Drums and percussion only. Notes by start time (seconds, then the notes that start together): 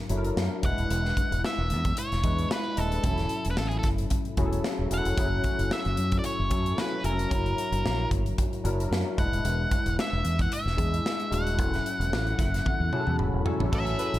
0.09 closed hi-hat
0.25 closed hi-hat
0.37 snare
0.63 kick, closed hi-hat
0.78 closed hi-hat
0.91 closed hi-hat
1.05 snare
1.17 kick, closed hi-hat
1.32 closed hi-hat
1.44 snare
1.70 closed hi-hat
1.85 kick, closed hi-hat
1.97 closed hi-hat
2.12 snare, closed hi-hat
2.23 kick, closed hi-hat
2.39 closed hi-hat
2.51 snare
2.77 closed hi-hat
2.92 closed hi-hat
3.04 kick, closed hi-hat
3.18 snare, closed hi-hat
3.29 closed hi-hat
3.45 closed hi-hat
3.57 snare
3.71 closed hi-hat
3.83 kick, snare, closed hi-hat
3.98 closed hi-hat
4.10 kick, closed hi-hat
4.25 closed hi-hat
4.37 kick, closed hi-hat
4.53 closed hi-hat
4.64 snare
4.91 closed hi-hat
5.05 closed hi-hat
5.17 kick, closed hi-hat
5.44 kick, closed hi-hat
5.59 closed hi-hat
5.71 snare
5.85 closed hi-hat
5.97 closed hi-hat
6.12 kick, closed hi-hat
6.24 closed hi-hat
6.51 kick, closed hi-hat
6.66 closed hi-hat
6.78 snare
7.04 closed hi-hat
7.19 closed hi-hat
7.31 kick, closed hi-hat
7.46 closed hi-hat
7.58 closed hi-hat
7.73 closed hi-hat
7.86 snare
8.11 kick, closed hi-hat
8.26 closed hi-hat
8.38 kick, closed hi-hat
8.53 closed hi-hat
8.65 closed hi-hat
8.80 closed hi-hat
8.93 snare
9.18 kick, closed hi-hat
9.33 closed hi-hat
9.45 closed hi-hat
9.71 kick, closed hi-hat
9.86 closed hi-hat
9.99 snare
10.25 closed hi-hat
10.39 kick, closed hi-hat
10.52 closed hi-hat
10.67 snare
10.78 kick, closed hi-hat
10.94 closed hi-hat
11.06 snare
11.20 closed hi-hat
11.32 closed hi-hat
11.47 closed hi-hat
11.59 kick, closed hi-hat
11.74 snare, closed hi-hat
11.86 closed hi-hat
12.01 closed hi-hat
12.13 snare
12.27 closed hi-hat
12.39 kick, snare, closed hi-hat
12.54 snare, closed hi-hat
12.66 kick, high tom
12.93 mid tom
13.07 mid tom
13.19 mid tom
13.46 floor tom
13.60 floor tom
13.73 kick, crash
13.87 closed hi-hat
13.99 closed hi-hat
14.14 closed hi-hat